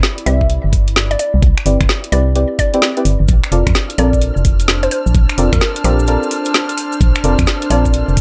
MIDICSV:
0, 0, Header, 1, 7, 480
1, 0, Start_track
1, 0, Tempo, 465116
1, 1472, Time_signature, 4, 2, 24, 8
1, 8471, End_track
2, 0, Start_track
2, 0, Title_t, "Violin section"
2, 0, Program_c, 0, 48
2, 3390, Note_on_c, 0, 89, 86
2, 8471, Note_off_c, 0, 89, 0
2, 8471, End_track
3, 0, Start_track
3, 0, Title_t, "Synth pluck"
3, 0, Program_c, 1, 84
3, 271, Note_on_c, 1, 76, 92
3, 752, Note_off_c, 1, 76, 0
3, 1144, Note_on_c, 1, 74, 88
3, 1200, Note_off_c, 1, 74, 0
3, 1232, Note_on_c, 1, 74, 72
3, 1330, Note_off_c, 1, 74, 0
3, 2190, Note_on_c, 1, 74, 89
3, 2394, Note_off_c, 1, 74, 0
3, 2672, Note_on_c, 1, 74, 90
3, 3152, Note_off_c, 1, 74, 0
3, 4113, Note_on_c, 1, 74, 90
3, 4592, Note_off_c, 1, 74, 0
3, 4985, Note_on_c, 1, 72, 90
3, 5041, Note_off_c, 1, 72, 0
3, 5071, Note_on_c, 1, 72, 76
3, 5170, Note_off_c, 1, 72, 0
3, 5704, Note_on_c, 1, 70, 89
3, 5880, Note_off_c, 1, 70, 0
3, 6031, Note_on_c, 1, 67, 89
3, 6425, Note_off_c, 1, 67, 0
3, 7952, Note_on_c, 1, 74, 92
3, 8432, Note_off_c, 1, 74, 0
3, 8471, End_track
4, 0, Start_track
4, 0, Title_t, "Analog synth pad"
4, 0, Program_c, 2, 89
4, 0, Note_on_c, 2, 64, 82
4, 0, Note_on_c, 2, 74, 80
4, 0, Note_on_c, 2, 83, 90
4, 3392, Note_off_c, 2, 83, 0
4, 3392, Note_on_c, 2, 62, 77
4, 3597, Note_on_c, 2, 72, 73
4, 4096, Note_off_c, 2, 74, 0
4, 4321, Note_on_c, 2, 81, 75
4, 5043, Note_off_c, 2, 64, 0
4, 8471, Note_off_c, 2, 62, 0
4, 8471, Note_off_c, 2, 72, 0
4, 8471, Note_off_c, 2, 81, 0
4, 8471, End_track
5, 0, Start_track
5, 0, Title_t, "Synth stab"
5, 0, Program_c, 3, 62
5, 271, Note_on_c, 3, 64, 90
5, 271, Note_on_c, 3, 71, 90
5, 271, Note_on_c, 3, 74, 105
5, 272, Note_on_c, 3, 60, 97
5, 272, Note_on_c, 3, 67, 88
5, 1691, Note_off_c, 3, 60, 0
5, 1691, Note_off_c, 3, 64, 0
5, 1691, Note_off_c, 3, 67, 0
5, 1691, Note_off_c, 3, 71, 0
5, 1691, Note_off_c, 3, 74, 0
5, 1710, Note_on_c, 3, 67, 84
5, 1711, Note_on_c, 3, 60, 90
5, 1711, Note_on_c, 3, 64, 85
5, 1711, Note_on_c, 3, 71, 81
5, 1711, Note_on_c, 3, 74, 101
5, 1832, Note_off_c, 3, 60, 0
5, 1832, Note_off_c, 3, 64, 0
5, 1832, Note_off_c, 3, 67, 0
5, 1832, Note_off_c, 3, 71, 0
5, 1832, Note_off_c, 3, 74, 0
5, 2190, Note_on_c, 3, 60, 87
5, 2190, Note_on_c, 3, 64, 83
5, 2190, Note_on_c, 3, 67, 82
5, 2190, Note_on_c, 3, 71, 82
5, 2190, Note_on_c, 3, 74, 100
5, 2311, Note_off_c, 3, 67, 0
5, 2312, Note_off_c, 3, 60, 0
5, 2312, Note_off_c, 3, 64, 0
5, 2312, Note_off_c, 3, 71, 0
5, 2312, Note_off_c, 3, 74, 0
5, 2430, Note_on_c, 3, 60, 78
5, 2430, Note_on_c, 3, 64, 71
5, 2430, Note_on_c, 3, 67, 74
5, 2430, Note_on_c, 3, 74, 86
5, 2431, Note_on_c, 3, 71, 72
5, 2794, Note_off_c, 3, 60, 0
5, 2794, Note_off_c, 3, 64, 0
5, 2794, Note_off_c, 3, 67, 0
5, 2794, Note_off_c, 3, 71, 0
5, 2794, Note_off_c, 3, 74, 0
5, 2825, Note_on_c, 3, 60, 94
5, 2825, Note_on_c, 3, 67, 90
5, 2825, Note_on_c, 3, 74, 106
5, 2826, Note_on_c, 3, 64, 88
5, 2826, Note_on_c, 3, 71, 90
5, 2952, Note_off_c, 3, 60, 0
5, 2952, Note_off_c, 3, 64, 0
5, 2952, Note_off_c, 3, 67, 0
5, 2952, Note_off_c, 3, 71, 0
5, 2952, Note_off_c, 3, 74, 0
5, 3065, Note_on_c, 3, 71, 85
5, 3066, Note_on_c, 3, 60, 92
5, 3066, Note_on_c, 3, 64, 84
5, 3066, Note_on_c, 3, 67, 85
5, 3066, Note_on_c, 3, 74, 102
5, 3133, Note_off_c, 3, 71, 0
5, 3134, Note_off_c, 3, 60, 0
5, 3134, Note_off_c, 3, 64, 0
5, 3134, Note_off_c, 3, 67, 0
5, 3134, Note_off_c, 3, 74, 0
5, 3632, Note_on_c, 3, 60, 81
5, 3632, Note_on_c, 3, 65, 72
5, 3632, Note_on_c, 3, 69, 73
5, 3632, Note_on_c, 3, 70, 71
5, 3632, Note_on_c, 3, 74, 86
5, 3752, Note_off_c, 3, 74, 0
5, 3753, Note_off_c, 3, 60, 0
5, 3753, Note_off_c, 3, 65, 0
5, 3753, Note_off_c, 3, 69, 0
5, 3753, Note_off_c, 3, 70, 0
5, 4113, Note_on_c, 3, 60, 97
5, 4113, Note_on_c, 3, 65, 90
5, 4113, Note_on_c, 3, 69, 88
5, 4113, Note_on_c, 3, 70, 89
5, 4113, Note_on_c, 3, 74, 109
5, 5532, Note_off_c, 3, 60, 0
5, 5532, Note_off_c, 3, 65, 0
5, 5532, Note_off_c, 3, 69, 0
5, 5532, Note_off_c, 3, 70, 0
5, 5532, Note_off_c, 3, 74, 0
5, 5552, Note_on_c, 3, 60, 93
5, 5552, Note_on_c, 3, 65, 85
5, 5552, Note_on_c, 3, 69, 85
5, 5552, Note_on_c, 3, 70, 83
5, 5553, Note_on_c, 3, 74, 101
5, 5673, Note_off_c, 3, 60, 0
5, 5673, Note_off_c, 3, 65, 0
5, 5673, Note_off_c, 3, 69, 0
5, 5673, Note_off_c, 3, 70, 0
5, 5673, Note_off_c, 3, 74, 0
5, 6032, Note_on_c, 3, 60, 88
5, 6032, Note_on_c, 3, 65, 81
5, 6032, Note_on_c, 3, 69, 83
5, 6032, Note_on_c, 3, 70, 82
5, 6032, Note_on_c, 3, 74, 100
5, 6153, Note_off_c, 3, 60, 0
5, 6153, Note_off_c, 3, 65, 0
5, 6153, Note_off_c, 3, 69, 0
5, 6153, Note_off_c, 3, 70, 0
5, 6153, Note_off_c, 3, 74, 0
5, 6272, Note_on_c, 3, 60, 81
5, 6272, Note_on_c, 3, 65, 75
5, 6272, Note_on_c, 3, 69, 73
5, 6272, Note_on_c, 3, 70, 74
5, 6272, Note_on_c, 3, 74, 87
5, 7451, Note_off_c, 3, 60, 0
5, 7451, Note_off_c, 3, 65, 0
5, 7451, Note_off_c, 3, 69, 0
5, 7451, Note_off_c, 3, 70, 0
5, 7451, Note_off_c, 3, 74, 0
5, 7473, Note_on_c, 3, 60, 80
5, 7473, Note_on_c, 3, 65, 76
5, 7473, Note_on_c, 3, 69, 75
5, 7473, Note_on_c, 3, 70, 74
5, 7473, Note_on_c, 3, 74, 88
5, 7593, Note_off_c, 3, 60, 0
5, 7593, Note_off_c, 3, 65, 0
5, 7593, Note_off_c, 3, 69, 0
5, 7593, Note_off_c, 3, 70, 0
5, 7593, Note_off_c, 3, 74, 0
5, 7953, Note_on_c, 3, 60, 96
5, 7953, Note_on_c, 3, 65, 92
5, 7953, Note_on_c, 3, 74, 107
5, 7954, Note_on_c, 3, 69, 91
5, 7954, Note_on_c, 3, 70, 91
5, 8471, Note_off_c, 3, 60, 0
5, 8471, Note_off_c, 3, 65, 0
5, 8471, Note_off_c, 3, 69, 0
5, 8471, Note_off_c, 3, 70, 0
5, 8471, Note_off_c, 3, 74, 0
5, 8471, End_track
6, 0, Start_track
6, 0, Title_t, "FM bass"
6, 0, Program_c, 4, 39
6, 272, Note_on_c, 4, 36, 88
6, 613, Note_off_c, 4, 36, 0
6, 664, Note_on_c, 4, 31, 83
6, 1201, Note_off_c, 4, 31, 0
6, 1384, Note_on_c, 4, 36, 86
6, 1453, Note_off_c, 4, 36, 0
6, 1470, Note_on_c, 4, 36, 96
6, 1592, Note_off_c, 4, 36, 0
6, 1710, Note_on_c, 4, 31, 88
6, 1832, Note_off_c, 4, 31, 0
6, 1863, Note_on_c, 4, 31, 86
6, 1932, Note_off_c, 4, 31, 0
6, 2190, Note_on_c, 4, 36, 86
6, 2532, Note_off_c, 4, 36, 0
6, 3150, Note_on_c, 4, 31, 85
6, 3272, Note_off_c, 4, 31, 0
6, 3304, Note_on_c, 4, 31, 96
6, 3373, Note_off_c, 4, 31, 0
6, 3391, Note_on_c, 4, 34, 98
6, 3512, Note_off_c, 4, 34, 0
6, 3630, Note_on_c, 4, 29, 92
6, 3751, Note_off_c, 4, 29, 0
6, 3784, Note_on_c, 4, 41, 88
6, 3852, Note_off_c, 4, 41, 0
6, 4111, Note_on_c, 4, 34, 89
6, 4452, Note_off_c, 4, 34, 0
6, 4503, Note_on_c, 4, 29, 83
6, 5041, Note_off_c, 4, 29, 0
6, 5225, Note_on_c, 4, 34, 87
6, 5293, Note_off_c, 4, 34, 0
6, 5310, Note_on_c, 4, 34, 98
6, 5432, Note_off_c, 4, 34, 0
6, 5552, Note_on_c, 4, 29, 88
6, 5672, Note_off_c, 4, 29, 0
6, 5704, Note_on_c, 4, 41, 85
6, 5773, Note_off_c, 4, 41, 0
6, 6031, Note_on_c, 4, 34, 87
6, 6372, Note_off_c, 4, 34, 0
6, 7231, Note_on_c, 4, 34, 97
6, 7352, Note_off_c, 4, 34, 0
6, 7471, Note_on_c, 4, 29, 93
6, 7592, Note_off_c, 4, 29, 0
6, 7625, Note_on_c, 4, 41, 89
6, 7693, Note_off_c, 4, 41, 0
6, 7951, Note_on_c, 4, 34, 88
6, 8292, Note_off_c, 4, 34, 0
6, 8343, Note_on_c, 4, 29, 84
6, 8471, Note_off_c, 4, 29, 0
6, 8471, End_track
7, 0, Start_track
7, 0, Title_t, "Drums"
7, 32, Note_on_c, 9, 38, 118
7, 136, Note_off_c, 9, 38, 0
7, 186, Note_on_c, 9, 42, 61
7, 273, Note_on_c, 9, 46, 101
7, 289, Note_off_c, 9, 42, 0
7, 376, Note_off_c, 9, 46, 0
7, 424, Note_on_c, 9, 36, 59
7, 512, Note_on_c, 9, 42, 58
7, 527, Note_off_c, 9, 36, 0
7, 616, Note_off_c, 9, 42, 0
7, 750, Note_on_c, 9, 36, 106
7, 752, Note_on_c, 9, 46, 99
7, 854, Note_off_c, 9, 36, 0
7, 855, Note_off_c, 9, 46, 0
7, 905, Note_on_c, 9, 42, 61
7, 993, Note_on_c, 9, 38, 121
7, 1009, Note_off_c, 9, 42, 0
7, 1096, Note_off_c, 9, 38, 0
7, 1146, Note_on_c, 9, 42, 47
7, 1231, Note_on_c, 9, 46, 97
7, 1249, Note_off_c, 9, 42, 0
7, 1335, Note_off_c, 9, 46, 0
7, 1471, Note_on_c, 9, 36, 117
7, 1472, Note_on_c, 9, 42, 61
7, 1574, Note_off_c, 9, 36, 0
7, 1575, Note_off_c, 9, 42, 0
7, 1626, Note_on_c, 9, 26, 64
7, 1626, Note_on_c, 9, 42, 34
7, 1711, Note_on_c, 9, 46, 95
7, 1729, Note_off_c, 9, 26, 0
7, 1729, Note_off_c, 9, 42, 0
7, 1814, Note_off_c, 9, 46, 0
7, 1864, Note_on_c, 9, 26, 64
7, 1864, Note_on_c, 9, 36, 109
7, 1864, Note_on_c, 9, 42, 62
7, 1952, Note_on_c, 9, 38, 117
7, 1967, Note_off_c, 9, 26, 0
7, 1967, Note_off_c, 9, 36, 0
7, 1967, Note_off_c, 9, 42, 0
7, 2055, Note_off_c, 9, 38, 0
7, 2105, Note_on_c, 9, 42, 60
7, 2191, Note_on_c, 9, 46, 98
7, 2208, Note_off_c, 9, 42, 0
7, 2295, Note_off_c, 9, 46, 0
7, 2431, Note_on_c, 9, 42, 60
7, 2534, Note_off_c, 9, 42, 0
7, 2671, Note_on_c, 9, 36, 61
7, 2671, Note_on_c, 9, 46, 93
7, 2774, Note_off_c, 9, 36, 0
7, 2775, Note_off_c, 9, 46, 0
7, 2824, Note_on_c, 9, 42, 62
7, 2910, Note_on_c, 9, 38, 119
7, 2927, Note_off_c, 9, 42, 0
7, 3014, Note_off_c, 9, 38, 0
7, 3064, Note_on_c, 9, 42, 49
7, 3151, Note_on_c, 9, 46, 95
7, 3167, Note_off_c, 9, 42, 0
7, 3254, Note_off_c, 9, 46, 0
7, 3388, Note_on_c, 9, 69, 62
7, 3391, Note_on_c, 9, 36, 115
7, 3392, Note_on_c, 9, 42, 63
7, 3491, Note_off_c, 9, 69, 0
7, 3494, Note_off_c, 9, 36, 0
7, 3495, Note_off_c, 9, 42, 0
7, 3546, Note_on_c, 9, 26, 63
7, 3546, Note_on_c, 9, 42, 35
7, 3549, Note_on_c, 9, 69, 36
7, 3631, Note_on_c, 9, 46, 97
7, 3649, Note_off_c, 9, 26, 0
7, 3649, Note_off_c, 9, 42, 0
7, 3652, Note_off_c, 9, 69, 0
7, 3734, Note_off_c, 9, 46, 0
7, 3785, Note_on_c, 9, 26, 62
7, 3785, Note_on_c, 9, 36, 103
7, 3785, Note_on_c, 9, 42, 65
7, 3788, Note_on_c, 9, 69, 80
7, 3869, Note_off_c, 9, 69, 0
7, 3869, Note_on_c, 9, 69, 62
7, 3870, Note_on_c, 9, 38, 112
7, 3888, Note_off_c, 9, 26, 0
7, 3888, Note_off_c, 9, 36, 0
7, 3888, Note_off_c, 9, 42, 0
7, 3972, Note_off_c, 9, 69, 0
7, 3973, Note_off_c, 9, 38, 0
7, 4024, Note_on_c, 9, 42, 64
7, 4025, Note_on_c, 9, 69, 40
7, 4110, Note_on_c, 9, 46, 99
7, 4127, Note_off_c, 9, 42, 0
7, 4128, Note_off_c, 9, 69, 0
7, 4213, Note_off_c, 9, 46, 0
7, 4264, Note_on_c, 9, 36, 61
7, 4271, Note_on_c, 9, 69, 76
7, 4350, Note_on_c, 9, 42, 64
7, 4352, Note_off_c, 9, 69, 0
7, 4352, Note_on_c, 9, 69, 66
7, 4368, Note_off_c, 9, 36, 0
7, 4453, Note_off_c, 9, 42, 0
7, 4455, Note_off_c, 9, 69, 0
7, 4507, Note_on_c, 9, 69, 36
7, 4590, Note_on_c, 9, 46, 99
7, 4591, Note_on_c, 9, 36, 104
7, 4610, Note_off_c, 9, 69, 0
7, 4694, Note_off_c, 9, 36, 0
7, 4694, Note_off_c, 9, 46, 0
7, 4744, Note_on_c, 9, 42, 64
7, 4752, Note_on_c, 9, 69, 75
7, 4830, Note_off_c, 9, 69, 0
7, 4830, Note_on_c, 9, 69, 63
7, 4831, Note_on_c, 9, 38, 117
7, 4847, Note_off_c, 9, 42, 0
7, 4934, Note_off_c, 9, 38, 0
7, 4934, Note_off_c, 9, 69, 0
7, 4985, Note_on_c, 9, 42, 51
7, 4991, Note_on_c, 9, 69, 36
7, 5070, Note_on_c, 9, 46, 96
7, 5088, Note_off_c, 9, 42, 0
7, 5094, Note_off_c, 9, 69, 0
7, 5174, Note_off_c, 9, 46, 0
7, 5230, Note_on_c, 9, 69, 73
7, 5311, Note_on_c, 9, 36, 115
7, 5311, Note_on_c, 9, 42, 68
7, 5313, Note_off_c, 9, 69, 0
7, 5313, Note_on_c, 9, 69, 60
7, 5414, Note_off_c, 9, 36, 0
7, 5414, Note_off_c, 9, 42, 0
7, 5417, Note_off_c, 9, 69, 0
7, 5462, Note_on_c, 9, 69, 35
7, 5464, Note_on_c, 9, 26, 63
7, 5464, Note_on_c, 9, 42, 37
7, 5551, Note_on_c, 9, 46, 101
7, 5566, Note_off_c, 9, 69, 0
7, 5567, Note_off_c, 9, 26, 0
7, 5567, Note_off_c, 9, 42, 0
7, 5654, Note_off_c, 9, 46, 0
7, 5704, Note_on_c, 9, 36, 101
7, 5705, Note_on_c, 9, 26, 61
7, 5705, Note_on_c, 9, 42, 66
7, 5709, Note_on_c, 9, 69, 64
7, 5789, Note_off_c, 9, 69, 0
7, 5789, Note_on_c, 9, 69, 59
7, 5792, Note_on_c, 9, 38, 112
7, 5807, Note_off_c, 9, 36, 0
7, 5808, Note_off_c, 9, 26, 0
7, 5808, Note_off_c, 9, 42, 0
7, 5892, Note_off_c, 9, 69, 0
7, 5896, Note_off_c, 9, 38, 0
7, 5942, Note_on_c, 9, 69, 38
7, 5945, Note_on_c, 9, 42, 68
7, 6032, Note_on_c, 9, 46, 103
7, 6045, Note_off_c, 9, 69, 0
7, 6048, Note_off_c, 9, 42, 0
7, 6135, Note_off_c, 9, 46, 0
7, 6187, Note_on_c, 9, 69, 68
7, 6266, Note_off_c, 9, 69, 0
7, 6266, Note_on_c, 9, 69, 64
7, 6272, Note_on_c, 9, 42, 65
7, 6369, Note_off_c, 9, 69, 0
7, 6375, Note_off_c, 9, 42, 0
7, 6431, Note_on_c, 9, 69, 39
7, 6513, Note_on_c, 9, 46, 100
7, 6534, Note_off_c, 9, 69, 0
7, 6616, Note_off_c, 9, 46, 0
7, 6658, Note_on_c, 9, 69, 68
7, 6666, Note_on_c, 9, 42, 69
7, 6753, Note_on_c, 9, 38, 112
7, 6756, Note_off_c, 9, 69, 0
7, 6756, Note_on_c, 9, 69, 58
7, 6769, Note_off_c, 9, 42, 0
7, 6856, Note_off_c, 9, 38, 0
7, 6859, Note_off_c, 9, 69, 0
7, 6906, Note_on_c, 9, 42, 51
7, 6908, Note_on_c, 9, 69, 37
7, 6993, Note_on_c, 9, 46, 104
7, 7010, Note_off_c, 9, 42, 0
7, 7011, Note_off_c, 9, 69, 0
7, 7096, Note_off_c, 9, 46, 0
7, 7146, Note_on_c, 9, 69, 70
7, 7231, Note_on_c, 9, 36, 113
7, 7233, Note_on_c, 9, 42, 68
7, 7234, Note_off_c, 9, 69, 0
7, 7234, Note_on_c, 9, 69, 66
7, 7335, Note_off_c, 9, 36, 0
7, 7336, Note_off_c, 9, 42, 0
7, 7337, Note_off_c, 9, 69, 0
7, 7381, Note_on_c, 9, 69, 34
7, 7386, Note_on_c, 9, 26, 66
7, 7386, Note_on_c, 9, 42, 38
7, 7471, Note_on_c, 9, 46, 103
7, 7484, Note_off_c, 9, 69, 0
7, 7489, Note_off_c, 9, 26, 0
7, 7489, Note_off_c, 9, 42, 0
7, 7574, Note_off_c, 9, 46, 0
7, 7623, Note_on_c, 9, 69, 69
7, 7625, Note_on_c, 9, 26, 64
7, 7625, Note_on_c, 9, 36, 100
7, 7625, Note_on_c, 9, 42, 66
7, 7706, Note_off_c, 9, 69, 0
7, 7706, Note_on_c, 9, 69, 59
7, 7711, Note_on_c, 9, 38, 109
7, 7728, Note_off_c, 9, 36, 0
7, 7729, Note_off_c, 9, 26, 0
7, 7729, Note_off_c, 9, 42, 0
7, 7810, Note_off_c, 9, 69, 0
7, 7814, Note_off_c, 9, 38, 0
7, 7862, Note_on_c, 9, 69, 35
7, 7865, Note_on_c, 9, 42, 68
7, 7951, Note_on_c, 9, 46, 111
7, 7965, Note_off_c, 9, 69, 0
7, 7968, Note_off_c, 9, 42, 0
7, 8054, Note_off_c, 9, 46, 0
7, 8105, Note_on_c, 9, 36, 55
7, 8107, Note_on_c, 9, 69, 69
7, 8186, Note_off_c, 9, 69, 0
7, 8186, Note_on_c, 9, 69, 59
7, 8191, Note_on_c, 9, 42, 66
7, 8208, Note_off_c, 9, 36, 0
7, 8290, Note_off_c, 9, 69, 0
7, 8295, Note_off_c, 9, 42, 0
7, 8345, Note_on_c, 9, 69, 39
7, 8431, Note_on_c, 9, 36, 98
7, 8431, Note_on_c, 9, 46, 106
7, 8448, Note_off_c, 9, 69, 0
7, 8471, Note_off_c, 9, 36, 0
7, 8471, Note_off_c, 9, 46, 0
7, 8471, End_track
0, 0, End_of_file